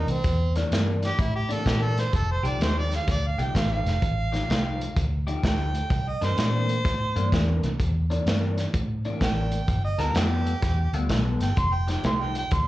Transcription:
Already playing: clean electric guitar C3 E3 A#3 D4
0.07 fingered electric bass C2, harmonica C4, closed hi-hat
0.24 fingered electric bass E2, kick, closed hi-hat
0.55 clean electric guitar C3 E3 A#3 D4, snare, closed hi-hat
0.71 fingered electric bass G2, clean electric guitar C3 E3 A#3 D4, snare, closed hi-hat
1.02 harmonica G4, snare, closed hi-hat
1.19 fingered electric bass A2, harmonica E4, kick, closed hi-hat
1.35 harmonica G4
1.49 clean electric guitar C3 E3 A#3 D4, harmonica A4, closed hi-hat
1.65 fingered electric bass A#2, clean electric guitar C3 E3 A#3 D4, harmonica G4, kick, snare, closed hi-hat
1.83 harmonica A4
1.97 harmonica C5, snare, closed hi-hat
2.13 fingered electric bass F1, harmonica A4, kick, closed hi-hat
2.32 harmonica C5
2.43 fingered electric bass C2, clean electric guitar F3 A3 D#4 G4, harmonica D5, closed hi-hat
2.59 fingered electric bass D#2, clean electric guitar F3 A3 D#4 G4, snare, closed hi-hat
2.63 harmonica C5
2.79 harmonica D5
2.92 harmonica F5, snare, closed hi-hat
3.08 fingered electric bass D2, harmonica D5, kick, snare, closed hi-hat
3.27 harmonica F5
3.38 fingered electric bass C2, clean electric guitar F3 A3 D#4 G4, closed hi-hat
3.42 harmonica G5
3.54 fingered electric bass A1, clean electric guitar F3 A3 D#4 G4, harmonica F5, kick, snare, closed hi-hat
3.73 harmonica F5
3.84 fingered electric bass F1, snare, closed hi-hat
4.02 fingered electric bass A1, kick, closed hi-hat
4.32 clean electric guitar F3 A3 D#4 G4, snare, closed hi-hat
4.48 fingered electric bass C2, clean electric guitar F3 A3 D#4 G4, snare, closed hi-hat
4.81 closed hi-hat
4.96 fingered electric bass D2, kick, closed hi-hat
5.27 clean electric guitar F3 A3 D#4 G4, closed hi-hat
5.43 fingered electric bass D2, clean electric guitar F3 A3 D#4 G4, harmonica G5, kick, snare, closed hi-hat
5.75 closed hi-hat
5.90 fingered electric bass C2, kick, closed hi-hat
6.08 harmonica D#5
6.21 fingered electric bass G2, clean electric guitar C3 E3 A#3 D4, harmonica C5, snare, closed hi-hat
6.37 fingered electric bass A#2, clean electric guitar C3 E3 A#3 D4, harmonica C5, snare, closed hi-hat
6.69 closed hi-hat
6.84 fingered electric bass A2, kick, snare, closed hi-hat
7.16 fingered electric bass G2, clean electric guitar C3 E3 A#3 D4, closed hi-hat
7.32 fingered electric bass E2, clean electric guitar C3 E3 A#3 D4, kick, snare, closed hi-hat
7.63 fingered electric bass C2, snare, closed hi-hat
7.79 fingered electric bass E2, kick, closed hi-hat
8.10 clean electric guitar C3 E3 A#3 D4, closed hi-hat
8.26 fingered electric bass G2, clean electric guitar C3 E3 A#3 D4, snare, closed hi-hat
8.58 snare, closed hi-hat
8.73 fingered electric bass A2, kick, closed hi-hat
9.05 clean electric guitar C3 E3 A#3 D4, closed hi-hat
9.21 fingered electric bass A1, clean electric guitar C3 E3 A#3 D4, harmonica G5, kick, snare, closed hi-hat
9.52 closed hi-hat
9.68 fingered electric bass G1, kick, closed hi-hat
9.84 harmonica D#5
9.98 fingered electric bass D2, clean electric guitar G3 B3 F4 A4, harmonica A#4, snare, closed hi-hat
10.14 fingered electric bass F2, clean electric guitar G3 B3 F4 A4, harmonica G4, snare, closed hi-hat
10.47 closed hi-hat
10.62 fingered electric bass E2, kick, snare, closed hi-hat
10.93 fingered electric bass D2, clean electric guitar G3 B3 F4 A4, closed hi-hat
11.09 fingered electric bass B1, clean electric guitar G3 B3 F4 A4, kick, snare, closed hi-hat
11.40 fingered electric bass G1, harmonica G5, snare, closed hi-hat
11.57 fingered electric bass F1, harmonica C6, kick, closed hi-hat
11.74 harmonica G5
11.88 clean electric guitar F3 A3 D#4 G4, harmonica G5, snare, closed hi-hat
12.04 fingered electric bass C2, clean electric guitar F3 A3 D#4 G4, harmonica C6, snare, closed hi-hat
12.21 harmonica G5
12.35 harmonica G5, closed hi-hat
12.51 fingered electric bass D2, harmonica C6, kick, closed hi-hat

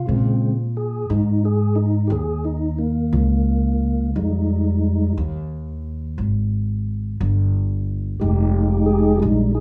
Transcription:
0.07 upright bass A#2, tonewheel organ C#3 G#3 C4
0.77 tonewheel organ G#4
1.10 upright bass G#2, tonewheel organ D#4
1.45 tonewheel organ G#4
1.76 tonewheel organ D#4
2.07 upright bass D#2, tonewheel organ G4
2.12 tonewheel organ G#4
2.45 tonewheel organ D#4
2.79 tonewheel organ A#3
3.13 upright bass C#2
4.16 upright bass F2, tonewheel organ G3 G#3 D#4
5.17 upright bass D#2
6.18 upright bass G#1
7.21 upright bass G1
8.20 upright bass F1, tonewheel organ G#3 D#4 G4
8.86 tonewheel organ G#4
9.20 upright bass A#1, tonewheel organ G3 G#3 D#4
9.55 tonewheel organ G#4

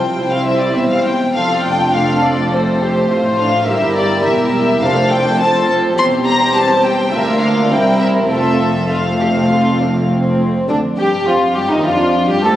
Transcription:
Already playing: cello section C2, double bass section C2, viola section F3 F4, violin section C4 C5 G5
0.15 cello section C2, double bass section C2, viola section G3 E4, violin section C4 C5
0.32 violin section F5
0.45 violin section E5
0.60 violin section D5
0.75 double bass section E1, cello section E2, violin section E5
0.90 violin section F5
1.04 violin section G5
1.34 double bass section F1, cello section F2, viola section F3 D4, violin section F4 A4 F5
1.64 violin section G5
1.93 viola section A3, violin section F4 A4 F5
2.23 violin section D5
2.51 viola section A3 C4, violin section A4 C5
2.82 violin section G4
3.09 double bass section A1, cello section A2, viola section C4, violin section F4 C5
3.39 viola section D4, violin section F5
3.67 double bass section G1, cello section G2, viola section G3 E4, violin section G4 A#4 E5
3.96 violin section D5
4.24 double bass section E1, cello section E2, violin section G4 E5
4.53 violin section E5
4.82 double bass section F1, cello section F2, viola section A3 D4, violin section A4 C5 F5
5.10 violin section G5
5.40 viola section F3 C4, violin section A4 C5 A5
5.98 double bass section E1, cello section E2, viola section G3 C4, violin section G4 C5 C6
6.26 violin section A#5
6.55 violin section A5
6.84 violin section G5
7.12 cello section D2, double bass section D2, viola section A#3 D4, violin section F4 A#4 E5
7.41 violin section F5
7.70 cello section C2, double bass section C2, viola section G3 C4, violin section E4 A#4 G5
8.00 violin section E5
8.30 double bass section F1, cello section F2, viola section A3 C4, violin section F4 A4 E5
8.89 viola section A3 C4, violin section F4 F5
9.20 violin section G4
9.49 violin section F4
9.80 violin section D4
10.09 violin section C4
10.68 double bass section D2, viola section D3, violin section D4
10.98 double bass section G2, viola section G3, violin section G4
11.27 double bass section F2, viola section F3, violin section F4
11.55 double bass section G2, viola section G3, violin section G4
11.70 double bass section D#2, viola section D#3, violin section D#4
11.84 double bass section F2, viola section F3, cello section D4, violin section F4
12.28 double bass section G2, viola section G3, violin section G4
12.43 double bass section A2, cello section F3, viola section A3, violin section A4

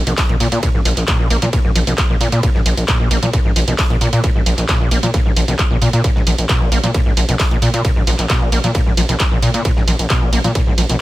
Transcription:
0.07 analog synth bass A#1, acid bass B2, closed hi-hat, ride
0.18 kick, snare, clap, closed hi-hat, open hi-hat
0.29 analog synth bass A#1, acid bass A#2, ride
0.40 analog synth bass A#2, acid bass A#2, open hi-hat, ride
0.52 acid bass A#2, analog synth bass A#2, closed hi-hat, ride
0.63 acid bass A#2, kick, closed hi-hat, ride
0.74 analog synth bass A#1, acid bass G#2
0.85 analog synth bass A#1, acid bass F3, open hi-hat, ride
0.97 analog synth bass A#1, clap, closed hi-hat
1.08 acid bass A#2, kick, snare, clap, closed hi-hat, ride
1.19 analog synth bass A#1, acid bass A#2
1.30 analog synth bass A#1, acid bass A#3, open hi-hat, ride
1.42 analog synth bass A#2, acid bass F3, closed hi-hat
1.53 acid bass A#2, kick, closed hi-hat, ride
1.65 analog synth bass A#1, acid bass G#2
1.75 analog synth bass A#1, acid bass F3, open hi-hat, ride
1.87 analog synth bass A#1, acid bass B2, snare, closed hi-hat
1.98 kick, snare, clap, closed hi-hat, ride
2.10 analog synth bass A#1, acid bass A#2
2.21 analog synth bass A#2, acid bass A#2, open hi-hat, ride
2.32 analog synth bass A#2, acid bass A#2, snare, closed hi-hat
2.43 acid bass A#2, kick, closed hi-hat, ride
2.55 analog synth bass A#1, acid bass G#2, snare
2.66 analog synth bass A#1, acid bass F3, open hi-hat, ride
2.77 analog synth bass A#1, closed hi-hat, ride
2.88 acid bass A#2, kick, snare, clap, closed hi-hat, ride
3.00 analog synth bass A#1, acid bass A#2
3.11 analog synth bass A#1, acid bass A#3, open hi-hat, ride
3.23 analog synth bass A#2, acid bass F3, closed hi-hat
3.33 acid bass A#2, kick, closed hi-hat, ride
3.45 analog synth bass A#1, acid bass G#2
3.56 analog synth bass A#1, acid bass F3, open hi-hat, ride
3.68 analog synth bass A#1, acid bass B2, closed hi-hat, ride
3.79 kick, snare, clap, closed hi-hat, open hi-hat
3.90 analog synth bass A#1, acid bass A#2, ride
4.01 analog synth bass A#2, acid bass A#2, open hi-hat, ride
4.13 analog synth bass A#2, acid bass A#2, closed hi-hat, ride
4.24 acid bass A#2, kick, closed hi-hat, ride
4.35 analog synth bass A#1, acid bass G#2
4.46 analog synth bass A#1, acid bass F3, open hi-hat, ride
4.58 analog synth bass A#1, clap, closed hi-hat
4.69 acid bass A#2, kick, snare, clap, closed hi-hat, ride
4.80 analog synth bass A#1, acid bass A#2
4.91 analog synth bass A#1, acid bass A#3, open hi-hat, ride
5.03 analog synth bass A#2, acid bass F3, closed hi-hat
5.14 acid bass A#2, kick, closed hi-hat, ride
5.26 analog synth bass A#1, acid bass G#2
5.36 analog synth bass A#1, acid bass F3, open hi-hat, ride
5.48 analog synth bass A#1, acid bass B2, snare, closed hi-hat
5.59 kick, clap, closed hi-hat, ride
5.71 analog synth bass A#1, acid bass A#2
5.82 analog synth bass A#2, acid bass A#2, open hi-hat, ride
5.93 analog synth bass A#2, acid bass A#2, snare, closed hi-hat
6.04 acid bass A#2, kick, closed hi-hat, ride
6.16 analog synth bass A#1, acid bass G#2, snare
6.27 analog synth bass A#1, acid bass F3, open hi-hat, ride
6.38 analog synth bass A#1, closed hi-hat, ride
6.49 acid bass B2, kick, snare, clap, closed hi-hat, ride
6.61 analog synth bass A#1, acid bass A#2
6.72 analog synth bass A#1, acid bass A#3, open hi-hat, ride
6.83 analog synth bass A#2, acid bass F3, closed hi-hat
6.94 acid bass A#2, kick, closed hi-hat, ride
7.06 analog synth bass A#1, acid bass G#2
7.17 analog synth bass A#1, acid bass F3, open hi-hat, ride
7.29 analog synth bass A#1, acid bass B2, closed hi-hat, ride
7.40 kick, snare, clap, closed hi-hat, open hi-hat
7.51 analog synth bass A#1, acid bass A#2, ride
7.62 acid bass A#2, analog synth bass A#2, open hi-hat, ride
7.74 acid bass A#2, analog synth bass A#2, closed hi-hat, ride
7.85 acid bass A#2, kick, closed hi-hat, ride
7.96 analog synth bass A#1, acid bass G#2
8.07 analog synth bass A#1, acid bass F3, open hi-hat, ride
8.19 analog synth bass A#1, clap, closed hi-hat
8.30 acid bass B2, kick, snare, clap, closed hi-hat, ride
8.41 analog synth bass A#1, acid bass A#2
8.52 analog synth bass A#1, acid bass A#3, open hi-hat, ride
8.64 analog synth bass A#2, acid bass F3, closed hi-hat
8.75 acid bass A#2, kick, closed hi-hat, ride
8.86 analog synth bass A#1, acid bass G#2
8.97 analog synth bass A#1, acid bass F3, open hi-hat, ride
9.09 analog synth bass A#1, acid bass B2, snare, closed hi-hat
9.20 kick, snare, clap, closed hi-hat, ride
9.32 analog synth bass A#1, acid bass A#2
9.42 acid bass A#2, analog synth bass A#2, open hi-hat, ride
9.54 acid bass A#2, analog synth bass A#2, snare, closed hi-hat
9.65 acid bass A#2, kick, closed hi-hat, ride
9.77 analog synth bass A#1, acid bass G#2, snare
9.88 analog synth bass A#1, acid bass F3, open hi-hat, ride
9.99 analog synth bass A#1, closed hi-hat, ride
10.10 acid bass B2, kick, snare, clap, closed hi-hat, ride
10.22 analog synth bass A#1, acid bass A#2
10.33 analog synth bass A#1, acid bass A#3, open hi-hat, ride
10.44 analog synth bass A#2, acid bass F3, closed hi-hat
10.55 acid bass A#2, kick, closed hi-hat, ride
10.67 analog synth bass A#1, acid bass G#2
10.78 analog synth bass A#1, acid bass F3, open hi-hat, ride
10.89 analog synth bass A#1, acid bass B2, closed hi-hat, ride

